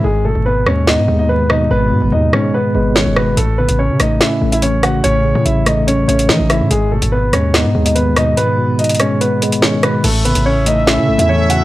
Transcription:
<<
  \new Staff \with { instrumentName = "Grand piano" } { \time 4/4 \key gis \phrygian \tempo 4 = 144 <gis gis'>8 <a a'>8 <b b'>8 <cis' cis''>8 <dis' dis''>8. <dis' dis''>16 <b b'>8 <dis' dis''>8 | <b b'>4 <dis' dis''>8 <cis' cis''>8 <b b'>8 <b b'>8 <cis' cis''>8 <b b'>8 | <a a'>8 <b b'>8 <cis' cis''>8 <dis' dis''>8 <e' e''>8. <e' e''>16 <cis' cis''>8 <fis' fis''>8 | <cis' cis''>4 <e' e''>8 <dis' dis''>8 <cis' cis''>8 <cis' cis''>8 <dis' dis''>8 <e' e''>8 |
<gis gis'>8 <a a'>8 <b b'>8 <cis' cis''>8 <dis' dis''>8. <dis' dis''>16 <b b'>8 <dis' dis''>8 | <b b'>4 <dis' dis''>8 <cis' cis''>8 <b b'>8 <b b'>8 <cis' cis''>8 <b b'>8 | <a a'>8 <b b'>8 <cis' cis''>8 <dis' dis''>8 <e' e''>8. <e' e''>16 <cis' cis''>8 <fis' fis''>8 | }
  \new Staff \with { instrumentName = "Brass ensemble" } { \time 4/4 \key gis \phrygian r1 | r1 | r1 | r1 |
r1 | r1 | <cis' e' a' e''>1 | }
  \new Staff \with { instrumentName = "Tine electric piano" } { \clef bass \time 4/4 \key gis \phrygian gis,8 b,4 gis8 b8 gis8 dis8 b,8 | gis,8 b,4 gis8 b8 gis8 dis8 b,8 | a,8 cis4 a8 cis'8 a8 e8 cis8 | a,8 cis4 a8 cis'8 a8 e8 cis8 |
gis,8 b,4 gis8 b8 gis8 dis8 b,8 | gis,8 b,4 gis8 b8 gis8 dis8 b,8 | a,8 cis4 a8 cis'8 a8 e8 cis8 | }
  \new Staff \with { instrumentName = "808-style bass" } { \clef bass \time 4/4 \key gis \phrygian gis,,8. gis,,8. dis,8. gis,16 dis,4. | gis,,8 gis,16 gis,,16 dis,8 gis,8 r8 gis,,8. fis,,8. | a,,8. a,,8 cis16 a,,8 r8 a,,4. | a,,8. a,16 a,,4. a,,8 e16 a,,8 a,16 |
gis,,8. gis,,8. dis,8. gis,16 dis,4. | r1 | a,,8. a,,4. cis16 a,,16 e,4~ e,16 | }
  \new DrumStaff \with { instrumentName = "Drums" } \drummode { \time 4/4 r4 r8 ss8 sn4 r8 ss8 | r4 r8 ss8 r4 sn8 ss8 | hh8. hh16 r8 <hh ss>8 <hh sn>8. hh16 hh8 <hh ss>8 | hh4 hh8 <hh ss>8 hh8 hh16 hh16 sn8 <hh ss>8 |
hh8. hh16 r8 <hh ss>8 <hh sn>8. hh16 hh8 <hh ss>8 | hh4 hh32 hh32 hh32 hh32 <hh ss>8 hh8 hh16 hh16 sn8 <hh ss>8 | <cymc hh>8 hh16 hh16 r8 hh8 <hh sn>8. hh16 r8 hh8 | }
>>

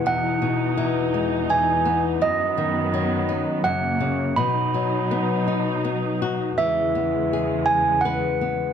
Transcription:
<<
  \new Staff \with { instrumentName = "Handbells" } { \time 3/4 \key e \lydian \tempo 4 = 82 fis''2 gis''8. r16 | dis''2 fis''4 | b''2 r4 | e''4. gis''8 fis''4 | }
  \new Staff \with { instrumentName = "Nylon-string guitar" } { \clef bass \time 3/4 \key e \lydian e,8 b,8 e8 gis8 e8 b8 | fis,8 dis8 fis8 dis'8 fis,8 cis8 | b,8 fis8 b8 dis'8 b8 fis'8 | e8 b8 gis'4 b'8 b8 | }
  \new Staff \with { instrumentName = "String section" } { \clef bass \time 3/4 \key e \lydian << { <e, b, dis'>2. | <dis fis b>2 <cis ais>4 | <b, fis dis'>2. | <e, cis gis>2. | } \\ { r2. | fis,2. | r2. | r2. | } >> }
>>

